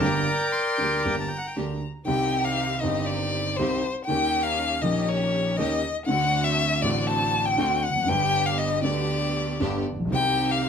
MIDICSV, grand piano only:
0, 0, Header, 1, 2, 480
1, 0, Start_track
1, 0, Key_signature, -3, "minor"
1, 0, Tempo, 504202
1, 34, Time_signature, 4, 2, 24, 8
1, 10175, End_track
2, 0, Start_track
2, 0, Title_t, "Grand piano"
2, 0, Program_c, 0, 0
2, 12, Note_on_c, 0, 50, 73
2, 13, Note_on_c, 0, 31, 86
2, 15, Note_on_c, 0, 55, 65
2, 15, Note_on_c, 0, 58, 63
2, 17, Note_on_c, 0, 43, 81
2, 20, Note_on_c, 0, 67, 79
2, 224, Note_off_c, 0, 50, 0
2, 225, Note_off_c, 0, 31, 0
2, 226, Note_off_c, 0, 55, 0
2, 226, Note_off_c, 0, 58, 0
2, 227, Note_off_c, 0, 43, 0
2, 229, Note_off_c, 0, 67, 0
2, 743, Note_on_c, 0, 50, 47
2, 747, Note_on_c, 0, 55, 38
2, 748, Note_on_c, 0, 38, 46
2, 748, Note_on_c, 0, 58, 39
2, 748, Note_on_c, 0, 67, 48
2, 955, Note_off_c, 0, 55, 0
2, 955, Note_off_c, 0, 58, 0
2, 955, Note_off_c, 0, 67, 0
2, 956, Note_off_c, 0, 38, 0
2, 957, Note_off_c, 0, 50, 0
2, 997, Note_on_c, 0, 55, 43
2, 998, Note_on_c, 0, 43, 56
2, 1000, Note_on_c, 0, 50, 50
2, 1004, Note_on_c, 0, 31, 58
2, 1004, Note_on_c, 0, 67, 55
2, 1006, Note_on_c, 0, 58, 46
2, 1202, Note_off_c, 0, 43, 0
2, 1202, Note_off_c, 0, 55, 0
2, 1203, Note_off_c, 0, 50, 0
2, 1205, Note_off_c, 0, 31, 0
2, 1205, Note_off_c, 0, 67, 0
2, 1206, Note_off_c, 0, 58, 0
2, 1488, Note_on_c, 0, 55, 41
2, 1491, Note_on_c, 0, 50, 57
2, 1493, Note_on_c, 0, 38, 57
2, 1493, Note_on_c, 0, 58, 38
2, 1493, Note_on_c, 0, 67, 49
2, 1691, Note_off_c, 0, 55, 0
2, 1694, Note_off_c, 0, 38, 0
2, 1694, Note_off_c, 0, 50, 0
2, 1694, Note_off_c, 0, 58, 0
2, 1694, Note_off_c, 0, 67, 0
2, 1950, Note_on_c, 0, 51, 68
2, 1966, Note_on_c, 0, 55, 65
2, 1972, Note_on_c, 0, 48, 80
2, 1974, Note_on_c, 0, 36, 77
2, 1977, Note_on_c, 0, 60, 63
2, 1987, Note_on_c, 0, 67, 67
2, 2649, Note_off_c, 0, 51, 0
2, 2657, Note_off_c, 0, 55, 0
2, 2660, Note_off_c, 0, 48, 0
2, 2661, Note_off_c, 0, 36, 0
2, 2663, Note_off_c, 0, 60, 0
2, 2668, Note_off_c, 0, 67, 0
2, 2679, Note_on_c, 0, 51, 61
2, 2694, Note_on_c, 0, 55, 50
2, 2699, Note_on_c, 0, 43, 75
2, 2701, Note_on_c, 0, 31, 68
2, 2703, Note_on_c, 0, 60, 59
2, 2721, Note_on_c, 0, 67, 60
2, 3374, Note_off_c, 0, 51, 0
2, 3382, Note_off_c, 0, 55, 0
2, 3384, Note_off_c, 0, 43, 0
2, 3385, Note_off_c, 0, 31, 0
2, 3386, Note_off_c, 0, 60, 0
2, 3395, Note_off_c, 0, 67, 0
2, 3416, Note_on_c, 0, 51, 68
2, 3420, Note_on_c, 0, 36, 77
2, 3420, Note_on_c, 0, 48, 83
2, 3420, Note_on_c, 0, 67, 71
2, 3421, Note_on_c, 0, 55, 60
2, 3423, Note_on_c, 0, 60, 61
2, 3619, Note_off_c, 0, 51, 0
2, 3621, Note_off_c, 0, 36, 0
2, 3621, Note_off_c, 0, 48, 0
2, 3621, Note_off_c, 0, 55, 0
2, 3621, Note_off_c, 0, 67, 0
2, 3623, Note_off_c, 0, 60, 0
2, 3877, Note_on_c, 0, 51, 81
2, 3889, Note_on_c, 0, 58, 66
2, 3895, Note_on_c, 0, 39, 77
2, 3902, Note_on_c, 0, 61, 65
2, 3920, Note_on_c, 0, 67, 75
2, 4569, Note_off_c, 0, 51, 0
2, 4575, Note_off_c, 0, 58, 0
2, 4577, Note_off_c, 0, 39, 0
2, 4581, Note_off_c, 0, 61, 0
2, 4583, Note_on_c, 0, 51, 61
2, 4590, Note_off_c, 0, 67, 0
2, 4593, Note_on_c, 0, 58, 55
2, 4605, Note_on_c, 0, 34, 77
2, 4607, Note_on_c, 0, 46, 67
2, 4614, Note_on_c, 0, 61, 59
2, 4624, Note_on_c, 0, 67, 65
2, 5275, Note_off_c, 0, 51, 0
2, 5280, Note_off_c, 0, 58, 0
2, 5286, Note_off_c, 0, 34, 0
2, 5287, Note_off_c, 0, 46, 0
2, 5291, Note_off_c, 0, 61, 0
2, 5295, Note_off_c, 0, 67, 0
2, 5315, Note_on_c, 0, 39, 78
2, 5316, Note_on_c, 0, 61, 69
2, 5317, Note_on_c, 0, 51, 86
2, 5317, Note_on_c, 0, 58, 65
2, 5320, Note_on_c, 0, 67, 83
2, 5519, Note_off_c, 0, 39, 0
2, 5520, Note_off_c, 0, 61, 0
2, 5521, Note_off_c, 0, 51, 0
2, 5521, Note_off_c, 0, 58, 0
2, 5522, Note_off_c, 0, 67, 0
2, 5773, Note_on_c, 0, 50, 67
2, 5787, Note_off_c, 0, 50, 0
2, 5787, Note_on_c, 0, 57, 70
2, 5794, Note_on_c, 0, 50, 89
2, 5798, Note_on_c, 0, 38, 83
2, 5800, Note_on_c, 0, 60, 63
2, 5812, Note_on_c, 0, 66, 78
2, 6468, Note_off_c, 0, 50, 0
2, 6469, Note_off_c, 0, 57, 0
2, 6474, Note_off_c, 0, 38, 0
2, 6475, Note_off_c, 0, 60, 0
2, 6481, Note_off_c, 0, 66, 0
2, 6482, Note_on_c, 0, 50, 63
2, 6502, Note_on_c, 0, 57, 60
2, 6506, Note_on_c, 0, 33, 76
2, 6509, Note_on_c, 0, 45, 76
2, 6513, Note_on_c, 0, 60, 54
2, 6522, Note_on_c, 0, 66, 73
2, 7174, Note_off_c, 0, 50, 0
2, 7183, Note_off_c, 0, 57, 0
2, 7185, Note_off_c, 0, 33, 0
2, 7187, Note_off_c, 0, 45, 0
2, 7189, Note_off_c, 0, 60, 0
2, 7193, Note_off_c, 0, 66, 0
2, 7216, Note_on_c, 0, 38, 83
2, 7217, Note_on_c, 0, 50, 81
2, 7219, Note_on_c, 0, 57, 65
2, 7219, Note_on_c, 0, 66, 83
2, 7222, Note_on_c, 0, 60, 67
2, 7420, Note_off_c, 0, 38, 0
2, 7422, Note_off_c, 0, 57, 0
2, 7422, Note_off_c, 0, 66, 0
2, 7423, Note_off_c, 0, 50, 0
2, 7423, Note_off_c, 0, 60, 0
2, 7521, Note_on_c, 0, 40, 49
2, 7575, Note_on_c, 0, 41, 59
2, 7580, Note_off_c, 0, 40, 0
2, 7637, Note_off_c, 0, 41, 0
2, 7650, Note_on_c, 0, 42, 70
2, 7679, Note_on_c, 0, 50, 69
2, 7692, Note_on_c, 0, 55, 64
2, 7699, Note_on_c, 0, 31, 75
2, 7699, Note_on_c, 0, 43, 79
2, 7704, Note_off_c, 0, 42, 0
2, 7704, Note_on_c, 0, 59, 59
2, 7714, Note_on_c, 0, 67, 73
2, 8372, Note_off_c, 0, 50, 0
2, 8379, Note_off_c, 0, 55, 0
2, 8382, Note_off_c, 0, 31, 0
2, 8382, Note_off_c, 0, 43, 0
2, 8385, Note_off_c, 0, 59, 0
2, 8390, Note_off_c, 0, 67, 0
2, 8393, Note_on_c, 0, 50, 67
2, 8407, Note_off_c, 0, 50, 0
2, 8407, Note_on_c, 0, 55, 59
2, 8414, Note_on_c, 0, 50, 75
2, 8415, Note_on_c, 0, 59, 62
2, 8416, Note_on_c, 0, 38, 77
2, 8435, Note_on_c, 0, 67, 73
2, 9103, Note_off_c, 0, 55, 0
2, 9106, Note_off_c, 0, 50, 0
2, 9106, Note_off_c, 0, 59, 0
2, 9107, Note_off_c, 0, 38, 0
2, 9117, Note_off_c, 0, 67, 0
2, 9140, Note_on_c, 0, 50, 72
2, 9146, Note_on_c, 0, 43, 85
2, 9148, Note_on_c, 0, 55, 66
2, 9148, Note_on_c, 0, 59, 63
2, 9151, Note_on_c, 0, 31, 85
2, 9152, Note_on_c, 0, 67, 80
2, 9346, Note_off_c, 0, 50, 0
2, 9349, Note_off_c, 0, 43, 0
2, 9350, Note_off_c, 0, 55, 0
2, 9350, Note_off_c, 0, 59, 0
2, 9352, Note_off_c, 0, 31, 0
2, 9353, Note_off_c, 0, 67, 0
2, 9447, Note_on_c, 0, 33, 44
2, 9508, Note_off_c, 0, 33, 0
2, 9517, Note_on_c, 0, 34, 58
2, 9568, Note_on_c, 0, 35, 67
2, 9574, Note_off_c, 0, 34, 0
2, 9617, Note_on_c, 0, 51, 64
2, 9630, Note_off_c, 0, 35, 0
2, 9630, Note_on_c, 0, 36, 80
2, 9630, Note_on_c, 0, 55, 60
2, 9636, Note_on_c, 0, 48, 84
2, 9641, Note_on_c, 0, 60, 62
2, 9658, Note_on_c, 0, 67, 75
2, 10175, Note_off_c, 0, 36, 0
2, 10175, Note_off_c, 0, 48, 0
2, 10175, Note_off_c, 0, 51, 0
2, 10175, Note_off_c, 0, 55, 0
2, 10175, Note_off_c, 0, 60, 0
2, 10175, Note_off_c, 0, 67, 0
2, 10175, End_track
0, 0, End_of_file